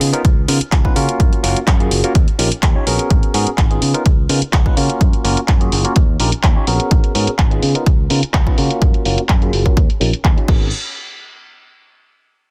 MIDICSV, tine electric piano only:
0, 0, Header, 1, 2, 480
1, 0, Start_track
1, 0, Tempo, 476190
1, 1209, Time_signature, 4, 2, 24, 8
1, 12607, End_track
2, 0, Start_track
2, 0, Title_t, "Tine electric piano"
2, 0, Program_c, 0, 4
2, 0, Note_on_c, 0, 61, 74
2, 0, Note_on_c, 0, 63, 77
2, 0, Note_on_c, 0, 65, 75
2, 0, Note_on_c, 0, 68, 88
2, 101, Note_off_c, 0, 61, 0
2, 102, Note_off_c, 0, 63, 0
2, 103, Note_off_c, 0, 65, 0
2, 104, Note_off_c, 0, 68, 0
2, 126, Note_on_c, 0, 59, 87
2, 130, Note_on_c, 0, 61, 77
2, 132, Note_on_c, 0, 63, 75
2, 134, Note_on_c, 0, 65, 78
2, 135, Note_on_c, 0, 70, 93
2, 216, Note_off_c, 0, 59, 0
2, 217, Note_off_c, 0, 61, 0
2, 218, Note_off_c, 0, 63, 0
2, 219, Note_off_c, 0, 65, 0
2, 220, Note_off_c, 0, 70, 0
2, 483, Note_on_c, 0, 59, 88
2, 486, Note_on_c, 0, 63, 77
2, 487, Note_on_c, 0, 61, 80
2, 490, Note_on_c, 0, 65, 78
2, 492, Note_on_c, 0, 70, 95
2, 580, Note_off_c, 0, 59, 0
2, 582, Note_off_c, 0, 61, 0
2, 582, Note_off_c, 0, 63, 0
2, 584, Note_off_c, 0, 65, 0
2, 585, Note_off_c, 0, 70, 0
2, 847, Note_on_c, 0, 59, 82
2, 849, Note_on_c, 0, 61, 79
2, 852, Note_on_c, 0, 63, 77
2, 853, Note_on_c, 0, 65, 74
2, 854, Note_on_c, 0, 71, 89
2, 938, Note_off_c, 0, 59, 0
2, 938, Note_off_c, 0, 61, 0
2, 940, Note_off_c, 0, 63, 0
2, 941, Note_off_c, 0, 65, 0
2, 941, Note_off_c, 0, 71, 0
2, 962, Note_on_c, 0, 58, 94
2, 964, Note_on_c, 0, 61, 88
2, 966, Note_on_c, 0, 65, 86
2, 967, Note_on_c, 0, 66, 87
2, 970, Note_on_c, 0, 70, 103
2, 1418, Note_off_c, 0, 58, 0
2, 1419, Note_off_c, 0, 61, 0
2, 1420, Note_off_c, 0, 65, 0
2, 1421, Note_off_c, 0, 66, 0
2, 1422, Note_off_c, 0, 70, 0
2, 1444, Note_on_c, 0, 58, 88
2, 1445, Note_on_c, 0, 61, 80
2, 1445, Note_on_c, 0, 65, 78
2, 1449, Note_on_c, 0, 66, 81
2, 1451, Note_on_c, 0, 70, 94
2, 1594, Note_off_c, 0, 58, 0
2, 1595, Note_off_c, 0, 61, 0
2, 1595, Note_off_c, 0, 65, 0
2, 1597, Note_off_c, 0, 66, 0
2, 1598, Note_off_c, 0, 70, 0
2, 1811, Note_on_c, 0, 58, 82
2, 1813, Note_on_c, 0, 61, 73
2, 1814, Note_on_c, 0, 65, 73
2, 1817, Note_on_c, 0, 66, 74
2, 1817, Note_on_c, 0, 68, 87
2, 2023, Note_off_c, 0, 58, 0
2, 2024, Note_off_c, 0, 61, 0
2, 2024, Note_off_c, 0, 65, 0
2, 2026, Note_off_c, 0, 66, 0
2, 2026, Note_off_c, 0, 68, 0
2, 2053, Note_on_c, 0, 58, 85
2, 2056, Note_on_c, 0, 61, 76
2, 2057, Note_on_c, 0, 65, 76
2, 2058, Note_on_c, 0, 66, 77
2, 2060, Note_on_c, 0, 70, 90
2, 2139, Note_off_c, 0, 58, 0
2, 2140, Note_off_c, 0, 61, 0
2, 2141, Note_off_c, 0, 65, 0
2, 2141, Note_off_c, 0, 66, 0
2, 2142, Note_off_c, 0, 70, 0
2, 2405, Note_on_c, 0, 61, 85
2, 2406, Note_on_c, 0, 63, 79
2, 2409, Note_on_c, 0, 65, 81
2, 2412, Note_on_c, 0, 67, 78
2, 2414, Note_on_c, 0, 70, 93
2, 2501, Note_off_c, 0, 61, 0
2, 2502, Note_off_c, 0, 63, 0
2, 2503, Note_off_c, 0, 65, 0
2, 2504, Note_off_c, 0, 67, 0
2, 2506, Note_off_c, 0, 70, 0
2, 2771, Note_on_c, 0, 61, 81
2, 2772, Note_on_c, 0, 63, 74
2, 2774, Note_on_c, 0, 65, 75
2, 2776, Note_on_c, 0, 67, 76
2, 2779, Note_on_c, 0, 73, 89
2, 2859, Note_off_c, 0, 61, 0
2, 2860, Note_off_c, 0, 63, 0
2, 2861, Note_off_c, 0, 65, 0
2, 2862, Note_off_c, 0, 67, 0
2, 2863, Note_off_c, 0, 73, 0
2, 2886, Note_on_c, 0, 59, 95
2, 2887, Note_on_c, 0, 61, 86
2, 2889, Note_on_c, 0, 66, 88
2, 2892, Note_on_c, 0, 68, 86
2, 2894, Note_on_c, 0, 70, 103
2, 3340, Note_off_c, 0, 59, 0
2, 3341, Note_off_c, 0, 61, 0
2, 3342, Note_off_c, 0, 66, 0
2, 3343, Note_off_c, 0, 68, 0
2, 3344, Note_off_c, 0, 70, 0
2, 3364, Note_on_c, 0, 59, 86
2, 3367, Note_on_c, 0, 61, 83
2, 3369, Note_on_c, 0, 66, 79
2, 3370, Note_on_c, 0, 68, 81
2, 3374, Note_on_c, 0, 70, 97
2, 3515, Note_off_c, 0, 59, 0
2, 3516, Note_off_c, 0, 61, 0
2, 3517, Note_off_c, 0, 66, 0
2, 3518, Note_off_c, 0, 68, 0
2, 3520, Note_off_c, 0, 70, 0
2, 3732, Note_on_c, 0, 59, 82
2, 3733, Note_on_c, 0, 61, 77
2, 3736, Note_on_c, 0, 63, 74
2, 3739, Note_on_c, 0, 65, 76
2, 3741, Note_on_c, 0, 68, 90
2, 3943, Note_off_c, 0, 59, 0
2, 3944, Note_off_c, 0, 61, 0
2, 3945, Note_off_c, 0, 63, 0
2, 3947, Note_off_c, 0, 65, 0
2, 3948, Note_off_c, 0, 68, 0
2, 3970, Note_on_c, 0, 59, 83
2, 3971, Note_on_c, 0, 63, 76
2, 3972, Note_on_c, 0, 61, 76
2, 3974, Note_on_c, 0, 65, 77
2, 3978, Note_on_c, 0, 70, 91
2, 4057, Note_off_c, 0, 59, 0
2, 4058, Note_off_c, 0, 61, 0
2, 4058, Note_off_c, 0, 63, 0
2, 4060, Note_off_c, 0, 65, 0
2, 4061, Note_off_c, 0, 70, 0
2, 4326, Note_on_c, 0, 59, 88
2, 4326, Note_on_c, 0, 61, 79
2, 4328, Note_on_c, 0, 63, 78
2, 4331, Note_on_c, 0, 65, 80
2, 4332, Note_on_c, 0, 70, 96
2, 4421, Note_off_c, 0, 59, 0
2, 4422, Note_off_c, 0, 61, 0
2, 4423, Note_off_c, 0, 63, 0
2, 4424, Note_off_c, 0, 65, 0
2, 4425, Note_off_c, 0, 70, 0
2, 4692, Note_on_c, 0, 61, 77
2, 4693, Note_on_c, 0, 59, 81
2, 4695, Note_on_c, 0, 63, 79
2, 4697, Note_on_c, 0, 65, 76
2, 4700, Note_on_c, 0, 71, 90
2, 4780, Note_off_c, 0, 59, 0
2, 4780, Note_off_c, 0, 61, 0
2, 4781, Note_off_c, 0, 63, 0
2, 4783, Note_off_c, 0, 65, 0
2, 4784, Note_off_c, 0, 71, 0
2, 4805, Note_on_c, 0, 58, 97
2, 4806, Note_on_c, 0, 61, 89
2, 4808, Note_on_c, 0, 65, 85
2, 4809, Note_on_c, 0, 66, 87
2, 4812, Note_on_c, 0, 70, 100
2, 5259, Note_off_c, 0, 58, 0
2, 5260, Note_off_c, 0, 61, 0
2, 5261, Note_off_c, 0, 65, 0
2, 5262, Note_off_c, 0, 66, 0
2, 5263, Note_off_c, 0, 70, 0
2, 5283, Note_on_c, 0, 58, 84
2, 5285, Note_on_c, 0, 61, 85
2, 5286, Note_on_c, 0, 65, 81
2, 5288, Note_on_c, 0, 66, 83
2, 5289, Note_on_c, 0, 70, 99
2, 5434, Note_off_c, 0, 58, 0
2, 5435, Note_off_c, 0, 61, 0
2, 5436, Note_off_c, 0, 65, 0
2, 5437, Note_off_c, 0, 66, 0
2, 5437, Note_off_c, 0, 70, 0
2, 5646, Note_on_c, 0, 58, 84
2, 5650, Note_on_c, 0, 61, 77
2, 5651, Note_on_c, 0, 65, 78
2, 5654, Note_on_c, 0, 66, 76
2, 5656, Note_on_c, 0, 68, 90
2, 5860, Note_off_c, 0, 58, 0
2, 5862, Note_off_c, 0, 61, 0
2, 5863, Note_off_c, 0, 65, 0
2, 5864, Note_off_c, 0, 66, 0
2, 5865, Note_off_c, 0, 68, 0
2, 5887, Note_on_c, 0, 58, 85
2, 5890, Note_on_c, 0, 61, 79
2, 5892, Note_on_c, 0, 65, 79
2, 5895, Note_on_c, 0, 66, 78
2, 5896, Note_on_c, 0, 70, 95
2, 5976, Note_off_c, 0, 58, 0
2, 5977, Note_off_c, 0, 61, 0
2, 5979, Note_off_c, 0, 65, 0
2, 5980, Note_off_c, 0, 66, 0
2, 5980, Note_off_c, 0, 70, 0
2, 6244, Note_on_c, 0, 63, 77
2, 6245, Note_on_c, 0, 61, 86
2, 6248, Note_on_c, 0, 65, 81
2, 6249, Note_on_c, 0, 67, 80
2, 6252, Note_on_c, 0, 70, 96
2, 6341, Note_off_c, 0, 61, 0
2, 6341, Note_off_c, 0, 63, 0
2, 6343, Note_off_c, 0, 65, 0
2, 6343, Note_off_c, 0, 67, 0
2, 6344, Note_off_c, 0, 70, 0
2, 6608, Note_on_c, 0, 61, 85
2, 6610, Note_on_c, 0, 63, 79
2, 6611, Note_on_c, 0, 65, 78
2, 6614, Note_on_c, 0, 67, 78
2, 6616, Note_on_c, 0, 73, 95
2, 6698, Note_off_c, 0, 61, 0
2, 6699, Note_off_c, 0, 63, 0
2, 6700, Note_off_c, 0, 65, 0
2, 6701, Note_off_c, 0, 67, 0
2, 6702, Note_off_c, 0, 73, 0
2, 6720, Note_on_c, 0, 59, 94
2, 6722, Note_on_c, 0, 61, 88
2, 6724, Note_on_c, 0, 66, 86
2, 6725, Note_on_c, 0, 68, 88
2, 6728, Note_on_c, 0, 70, 108
2, 7177, Note_off_c, 0, 59, 0
2, 7178, Note_off_c, 0, 61, 0
2, 7179, Note_off_c, 0, 66, 0
2, 7180, Note_off_c, 0, 68, 0
2, 7181, Note_off_c, 0, 70, 0
2, 7200, Note_on_c, 0, 59, 90
2, 7202, Note_on_c, 0, 61, 84
2, 7204, Note_on_c, 0, 66, 82
2, 7206, Note_on_c, 0, 68, 83
2, 7209, Note_on_c, 0, 70, 98
2, 7353, Note_off_c, 0, 59, 0
2, 7354, Note_off_c, 0, 61, 0
2, 7354, Note_off_c, 0, 66, 0
2, 7356, Note_off_c, 0, 68, 0
2, 7357, Note_off_c, 0, 70, 0
2, 7566, Note_on_c, 0, 59, 81
2, 7567, Note_on_c, 0, 61, 77
2, 7570, Note_on_c, 0, 63, 76
2, 7573, Note_on_c, 0, 65, 75
2, 7574, Note_on_c, 0, 68, 89
2, 7780, Note_off_c, 0, 59, 0
2, 7781, Note_off_c, 0, 61, 0
2, 7782, Note_off_c, 0, 63, 0
2, 7784, Note_off_c, 0, 65, 0
2, 7784, Note_off_c, 0, 68, 0
2, 7807, Note_on_c, 0, 59, 88
2, 7808, Note_on_c, 0, 61, 79
2, 7811, Note_on_c, 0, 63, 76
2, 7813, Note_on_c, 0, 65, 75
2, 7815, Note_on_c, 0, 70, 93
2, 7896, Note_off_c, 0, 59, 0
2, 7896, Note_off_c, 0, 61, 0
2, 7898, Note_off_c, 0, 63, 0
2, 7899, Note_off_c, 0, 65, 0
2, 7900, Note_off_c, 0, 70, 0
2, 8161, Note_on_c, 0, 59, 91
2, 8163, Note_on_c, 0, 61, 80
2, 8167, Note_on_c, 0, 63, 80
2, 8168, Note_on_c, 0, 65, 83
2, 8171, Note_on_c, 0, 70, 94
2, 8259, Note_off_c, 0, 59, 0
2, 8260, Note_off_c, 0, 61, 0
2, 8262, Note_off_c, 0, 63, 0
2, 8263, Note_off_c, 0, 65, 0
2, 8264, Note_off_c, 0, 70, 0
2, 8529, Note_on_c, 0, 59, 86
2, 8530, Note_on_c, 0, 61, 76
2, 8534, Note_on_c, 0, 63, 78
2, 8534, Note_on_c, 0, 65, 81
2, 8537, Note_on_c, 0, 71, 95
2, 8619, Note_off_c, 0, 59, 0
2, 8619, Note_off_c, 0, 61, 0
2, 8621, Note_off_c, 0, 63, 0
2, 8621, Note_off_c, 0, 65, 0
2, 8623, Note_off_c, 0, 71, 0
2, 8643, Note_on_c, 0, 58, 97
2, 8645, Note_on_c, 0, 61, 88
2, 8647, Note_on_c, 0, 65, 86
2, 8648, Note_on_c, 0, 66, 89
2, 8651, Note_on_c, 0, 70, 105
2, 9099, Note_off_c, 0, 58, 0
2, 9100, Note_off_c, 0, 61, 0
2, 9101, Note_off_c, 0, 65, 0
2, 9101, Note_off_c, 0, 66, 0
2, 9103, Note_off_c, 0, 70, 0
2, 9122, Note_on_c, 0, 58, 89
2, 9124, Note_on_c, 0, 61, 81
2, 9126, Note_on_c, 0, 65, 83
2, 9128, Note_on_c, 0, 66, 82
2, 9130, Note_on_c, 0, 70, 93
2, 9274, Note_off_c, 0, 58, 0
2, 9275, Note_off_c, 0, 61, 0
2, 9275, Note_off_c, 0, 65, 0
2, 9277, Note_off_c, 0, 66, 0
2, 9278, Note_off_c, 0, 70, 0
2, 9491, Note_on_c, 0, 58, 82
2, 9492, Note_on_c, 0, 61, 74
2, 9494, Note_on_c, 0, 65, 77
2, 9496, Note_on_c, 0, 66, 75
2, 9500, Note_on_c, 0, 68, 90
2, 9703, Note_off_c, 0, 58, 0
2, 9703, Note_off_c, 0, 61, 0
2, 9704, Note_off_c, 0, 65, 0
2, 9705, Note_off_c, 0, 66, 0
2, 9707, Note_off_c, 0, 68, 0
2, 9731, Note_on_c, 0, 58, 85
2, 9733, Note_on_c, 0, 61, 80
2, 9733, Note_on_c, 0, 65, 79
2, 9737, Note_on_c, 0, 66, 80
2, 9737, Note_on_c, 0, 70, 94
2, 9818, Note_off_c, 0, 58, 0
2, 9819, Note_off_c, 0, 61, 0
2, 9819, Note_off_c, 0, 65, 0
2, 9821, Note_off_c, 0, 66, 0
2, 9821, Note_off_c, 0, 70, 0
2, 10081, Note_on_c, 0, 61, 83
2, 10085, Note_on_c, 0, 63, 77
2, 10086, Note_on_c, 0, 65, 78
2, 10088, Note_on_c, 0, 67, 78
2, 10090, Note_on_c, 0, 70, 92
2, 10179, Note_off_c, 0, 61, 0
2, 10181, Note_off_c, 0, 63, 0
2, 10182, Note_off_c, 0, 65, 0
2, 10182, Note_off_c, 0, 67, 0
2, 10184, Note_off_c, 0, 70, 0
2, 10449, Note_on_c, 0, 61, 82
2, 10451, Note_on_c, 0, 63, 75
2, 10454, Note_on_c, 0, 65, 76
2, 10456, Note_on_c, 0, 67, 77
2, 10458, Note_on_c, 0, 73, 92
2, 10539, Note_off_c, 0, 61, 0
2, 10540, Note_off_c, 0, 63, 0
2, 10541, Note_off_c, 0, 65, 0
2, 10542, Note_off_c, 0, 67, 0
2, 10543, Note_off_c, 0, 73, 0
2, 10559, Note_on_c, 0, 59, 80
2, 10565, Note_on_c, 0, 61, 73
2, 10576, Note_on_c, 0, 68, 74
2, 10584, Note_on_c, 0, 70, 88
2, 10744, Note_off_c, 0, 59, 0
2, 10748, Note_off_c, 0, 61, 0
2, 10754, Note_off_c, 0, 68, 0
2, 10758, Note_off_c, 0, 70, 0
2, 12607, End_track
0, 0, End_of_file